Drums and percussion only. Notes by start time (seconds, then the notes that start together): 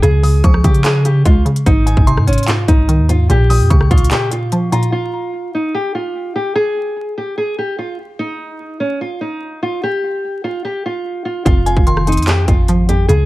0.03 closed hi-hat
0.23 open hi-hat
0.44 kick, closed hi-hat
0.54 cross-stick
0.64 kick, closed hi-hat
0.74 closed hi-hat
0.85 clap, closed hi-hat
1.05 closed hi-hat
1.25 kick, closed hi-hat
1.46 closed hi-hat
1.56 closed hi-hat
1.66 kick, closed hi-hat
1.87 closed hi-hat
1.97 kick
2.07 closed hi-hat
2.17 cross-stick
2.28 closed hi-hat
2.33 closed hi-hat
2.38 closed hi-hat
2.43 closed hi-hat
2.48 clap, closed hi-hat
2.68 kick, closed hi-hat
2.89 closed hi-hat
3.09 closed hi-hat
3.30 closed hi-hat
3.50 open hi-hat
3.70 kick, closed hi-hat
3.81 cross-stick
3.91 kick, closed hi-hat
3.98 closed hi-hat
4.04 closed hi-hat
4.11 clap, closed hi-hat
4.32 closed hi-hat
4.52 closed hi-hat
4.72 closed hi-hat
4.83 closed hi-hat
11.46 kick, closed hi-hat
11.66 closed hi-hat
11.77 kick
11.87 closed hi-hat
11.97 cross-stick
12.07 closed hi-hat
12.12 closed hi-hat
12.17 closed hi-hat
12.22 closed hi-hat
12.27 clap, closed hi-hat
12.48 kick, closed hi-hat
12.68 closed hi-hat
12.89 closed hi-hat
13.09 closed hi-hat